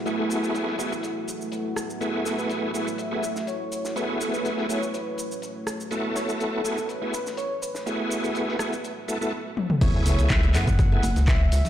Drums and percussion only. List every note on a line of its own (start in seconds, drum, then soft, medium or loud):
0.06 closed hi-hat medium
0.06 shaker soft
0.30 closed hi-hat medium
0.30 shaker medium
0.43 closed hi-hat soft
0.43 shaker soft
0.54 closed hi-hat medium
0.54 shaker soft
0.67 snare soft
0.78 closed hi-hat medium
0.78 shaker medium
0.92 closed hi-hat soft
0.92 shaker soft
1.03 closed hi-hat medium
1.03 shaker soft
1.28 closed hi-hat medium
1.28 shaker medium
1.41 shaker soft
1.52 closed hi-hat medium
1.52 shaker soft
1.76 cross-stick medium
1.76 closed hi-hat medium
1.76 shaker medium
1.90 shaker soft
2.01 closed hi-hat medium
2.01 shaker soft
2.25 snare soft
2.25 closed hi-hat medium
2.25 shaker medium
2.39 shaker soft
2.49 closed hi-hat medium
2.49 shaker soft
2.74 closed hi-hat medium
2.74 shaker medium
2.87 closed hi-hat soft
2.87 shaker soft
2.98 closed hi-hat medium
2.98 shaker soft
3.23 closed hi-hat medium
3.23 shaker medium
3.36 snare soft
3.36 shaker soft
3.47 closed hi-hat medium
3.47 shaker soft
3.72 closed hi-hat medium
3.72 shaker medium
3.85 snare soft
3.85 shaker soft
3.96 closed hi-hat medium
3.96 shaker soft
4.20 closed hi-hat medium
4.20 shaker medium
4.34 closed hi-hat soft
4.34 shaker soft
4.45 closed hi-hat medium
4.45 shaker soft
4.58 snare soft
4.69 closed hi-hat medium
4.69 shaker medium
4.83 closed hi-hat soft
4.83 shaker soft
4.94 closed hi-hat medium
4.94 shaker soft
5.18 closed hi-hat medium
5.18 shaker medium
5.32 shaker soft
5.42 closed hi-hat medium
5.42 shaker soft
5.67 cross-stick medium
5.67 closed hi-hat medium
5.67 shaker medium
5.80 shaker soft
5.91 closed hi-hat medium
5.91 shaker soft
6.15 snare soft
6.15 closed hi-hat medium
6.15 shaker medium
6.29 shaker soft
6.40 closed hi-hat medium
6.40 shaker soft
6.64 closed hi-hat medium
6.64 shaker medium
6.77 closed hi-hat soft
6.77 shaker soft
6.89 closed hi-hat medium
6.89 shaker soft
7.14 closed hi-hat medium
7.14 shaker medium
7.27 snare soft
7.27 shaker soft
7.37 closed hi-hat medium
7.37 shaker soft
7.62 closed hi-hat medium
7.62 shaker medium
7.75 snare soft
7.75 shaker soft
7.87 closed hi-hat medium
7.87 shaker soft
8.10 closed hi-hat medium
8.10 shaker medium
8.24 closed hi-hat soft
8.24 shaker soft
8.35 closed hi-hat medium
8.35 shaker soft
8.48 snare soft
8.59 cross-stick medium
8.59 closed hi-hat medium
8.59 shaker medium
8.72 closed hi-hat soft
8.72 shaker soft
8.84 closed hi-hat medium
8.84 shaker soft
9.08 closed hi-hat medium
9.08 shaker medium
9.22 shaker soft
9.57 high tom medium
9.70 mid tom medium
9.81 kick loud
9.81 closed hi-hat medium
9.81 crash loud
9.81 shaker soft
10.06 snare soft
10.06 closed hi-hat medium
10.06 open hi-hat loud
10.06 shaker medium
10.19 closed hi-hat medium
10.19 shaker soft
10.30 kick loud
10.30 snare loud
10.30 clap loud
10.30 closed hi-hat medium
10.30 shaker soft
10.43 closed hi-hat soft
10.53 clap medium
10.53 closed hi-hat medium
10.53 open hi-hat loud
10.53 low conga loud
10.53 shaker medium
10.67 kick medium
10.67 closed hi-hat medium
10.67 closed hi-hat soft
10.67 shaker soft
10.79 kick loud
10.79 closed hi-hat medium
10.79 shaker soft
10.92 closed hi-hat soft
11.03 closed hi-hat medium
11.03 open hi-hat loud
11.03 high conga medium
11.03 shaker medium
11.16 snare soft
11.16 closed hi-hat medium
11.16 shaker soft
11.28 kick loud
11.28 snare loud
11.28 clap loud
11.28 closed hi-hat medium
11.28 high conga medium
11.28 shaker soft
11.52 closed hi-hat medium
11.52 open hi-hat loud
11.52 shaker medium
11.65 snare soft
11.65 closed hi-hat medium
11.65 low conga medium
11.65 shaker soft